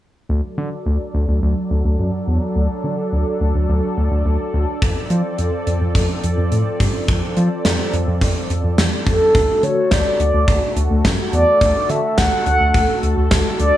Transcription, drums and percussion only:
4.82 kick loud
4.82 closed hi-hat medium
5.10 closed hi-hat medium
5.38 closed hi-hat medium
5.67 closed hi-hat medium
5.95 kick medium
5.95 closed hi-hat medium
6.24 closed hi-hat medium
6.52 closed hi-hat medium
6.80 kick medium
6.80 closed hi-hat medium
7.08 kick loud
7.08 closed hi-hat medium
7.37 closed hi-hat medium
7.65 snare loud
7.65 closed hi-hat medium
7.93 closed hi-hat medium
8.21 kick medium
8.21 closed hi-hat medium
8.50 closed hi-hat medium
8.78 snare loud
8.78 closed hi-hat medium
9.07 kick medium
9.07 closed hi-hat medium
9.35 kick loud
9.35 closed hi-hat medium
9.63 closed hi-hat medium
9.91 kick loud
9.91 snare loud
9.91 closed hi-hat medium
10.20 closed hi-hat medium
10.48 kick loud
10.48 closed hi-hat medium
10.77 closed hi-hat medium
11.05 kick loud
11.05 snare loud
11.05 closed hi-hat medium
11.33 closed hi-hat medium
11.61 kick loud
11.61 closed hi-hat medium
11.89 closed hi-hat medium
12.18 kick medium
12.18 snare loud
12.18 closed hi-hat medium
12.46 closed hi-hat medium
12.74 kick loud
12.74 closed hi-hat medium
13.03 closed hi-hat medium
13.31 kick loud
13.31 snare loud
13.31 closed hi-hat medium
13.59 closed hi-hat medium

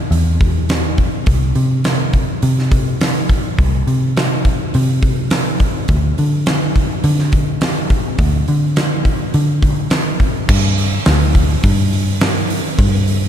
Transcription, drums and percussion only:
0.12 open hi-hat medium
0.41 kick medium
0.41 open hi-hat medium
0.69 snare loud
0.69 open hi-hat medium
0.98 kick medium
0.98 open hi-hat soft
1.26 kick loud
1.26 open hi-hat medium
1.55 open hi-hat medium
1.84 snare loud
1.84 open hi-hat medium
2.13 kick medium
2.13 open hi-hat medium
2.42 open hi-hat medium
2.59 snare soft
2.71 kick medium
2.71 open hi-hat medium
3.01 snare loud
3.01 open hi-hat medium
3.29 kick medium
3.29 open hi-hat medium
3.59 kick loud
3.59 open hi-hat medium
3.87 open hi-hat soft
4.17 snare loud
4.17 open hi-hat medium
4.45 kick medium
4.45 open hi-hat medium
4.74 open hi-hat medium
5.02 kick medium
5.02 open hi-hat medium
5.30 snare loud
5.30 open hi-hat medium
5.60 kick medium
5.60 open hi-hat medium
5.88 kick loud
5.88 open hi-hat medium
6.18 open hi-hat soft
6.46 snare loud
6.46 open hi-hat medium
6.76 kick medium
6.76 open hi-hat soft
7.04 open hi-hat medium
7.19 snare soft
7.32 kick medium
7.32 open hi-hat medium
7.61 snare loud
7.61 open hi-hat medium
7.90 kick medium
7.90 open hi-hat medium
8.18 kick loud
8.18 open hi-hat medium
8.48 open hi-hat soft
8.76 snare loud
8.76 open hi-hat medium
9.05 kick medium
9.05 open hi-hat medium
9.34 open hi-hat medium
9.63 kick medium
9.63 open hi-hat medium
9.90 snare loud
9.90 open hi-hat medium
10.20 kick medium
10.20 open hi-hat medium
10.49 kick loud
10.49 crash loud
10.78 open hi-hat medium
11.05 snare loud
11.05 open hi-hat medium
11.35 kick medium
11.35 open hi-hat medium
11.63 kick loud
11.63 open hi-hat medium
11.93 open hi-hat medium
12.21 snare loud
12.21 open hi-hat loud
12.50 open hi-hat medium
12.79 kick loud
12.79 open hi-hat medium
13.07 open hi-hat medium

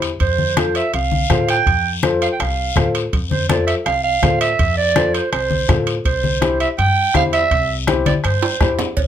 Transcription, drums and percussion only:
0.02 high timbale medium
0.02 short guiro medium
0.20 bombo low medium
0.20 high conga soft
0.20 high timbale medium
0.20 long guiro medium
0.39 high conga medium
0.57 bombo rim medium
0.57 high conga loud
0.57 high timbale medium
0.57 short guiro medium
0.75 high timbale medium
0.75 short guiro medium
0.94 high conga soft
0.94 high timbale medium
0.94 long guiro medium
1.12 high conga medium
1.30 bombo low medium
1.30 bombo rim medium
1.30 high conga medium
1.30 high timbale medium
1.30 low timbale medium
1.30 short guiro medium
1.49 high timbale medium
1.49 short guiro medium
1.66 bombo low medium
1.66 high conga soft
1.66 high timbale medium
1.66 long guiro medium
2.03 bombo rim medium
2.03 high conga loud
2.03 high timbale medium
2.03 short guiro medium
2.22 high timbale medium
2.22 short guiro medium
2.39 bombo rim medium
2.39 high conga soft
2.39 high timbale medium
2.39 long guiro medium
2.76 bombo low medium
2.76 bombo rim medium
2.76 high conga medium
2.76 low conga medium
2.76 high timbale medium
2.76 low timbale medium
2.76 short guiro medium
2.95 high timbale medium
2.95 short guiro medium
3.13 bombo low medium
3.13 high conga soft
3.13 high timbale medium
3.13 long guiro medium
3.31 high conga medium
3.49 bombo rim medium
3.49 high conga loud
3.49 high timbale medium
3.49 short guiro medium
3.68 high timbale medium
3.68 short guiro medium
3.86 bombo rim medium
3.86 high conga soft
3.86 high timbale medium
3.86 long guiro medium
4.23 bombo low medium
4.23 bombo rim medium
4.23 high conga medium
4.23 high timbale medium
4.23 low timbale medium
4.23 short guiro medium
4.41 high timbale medium
4.41 short guiro medium
4.59 bombo low medium
4.59 high conga soft
4.59 high timbale medium
4.59 long guiro medium
4.96 bombo rim medium
4.96 high conga loud
4.96 high timbale medium
4.96 short guiro medium
5.14 high timbale medium
5.14 short guiro medium
5.33 bombo rim medium
5.33 high conga soft
5.33 high timbale medium
5.33 long guiro medium
5.51 high conga medium
5.69 bombo low medium
5.69 bombo rim medium
5.69 high conga medium
5.69 low conga medium
5.69 high timbale medium
5.69 low timbale medium
5.69 short guiro medium
5.87 high timbale medium
5.87 short guiro medium
6.05 bombo low medium
6.05 high conga soft
6.05 high timbale medium
6.05 long guiro medium
6.24 high conga medium
6.42 bombo rim medium
6.42 high conga medium
6.42 high timbale medium
6.42 short guiro medium
6.60 high timbale medium
6.60 short guiro medium
6.78 high conga soft
6.78 high timbale medium
6.78 long guiro medium
7.14 bombo low medium
7.14 bombo rim medium
7.14 high conga medium
7.14 high timbale medium
7.14 low timbale medium
7.14 short guiro medium
7.33 high timbale medium
7.33 short guiro medium
7.51 bombo low medium
7.51 high conga soft
7.51 high timbale medium
7.51 long guiro medium
7.87 bombo rim medium
7.87 high conga loud
7.87 high timbale medium
7.87 short guiro medium
8.06 high conga loud
8.06 high timbale medium
8.06 short guiro medium
8.24 bombo rim medium
8.24 high timbale medium
8.24 long guiro medium
8.43 high timbale loud
8.61 bombo low medium
8.61 bombo rim medium
8.61 low conga medium
8.61 high timbale medium
8.61 short guiro medium
8.79 low conga medium
8.79 low timbale medium
8.79 short guiro medium
8.97 bombo low medium
8.97 cowbell loud
8.97 high conga soft
8.97 long guiro medium

